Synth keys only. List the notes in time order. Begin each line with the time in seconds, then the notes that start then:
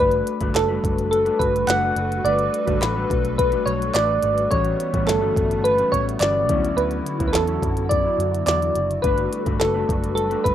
0.00 B4
0.55 A4
1.11 A4
1.39 B4
1.68 F#5
2.25 D5
2.81 B4
3.38 B4
3.66 C#5
3.94 D5
4.51 C#5
5.07 A4
5.64 B4
5.92 C#5
6.20 D5
6.77 B4
7.28 B4
7.33 A4
7.89 D5
8.46 D5
9.02 B4
9.60 A4
10.15 A4
10.44 B4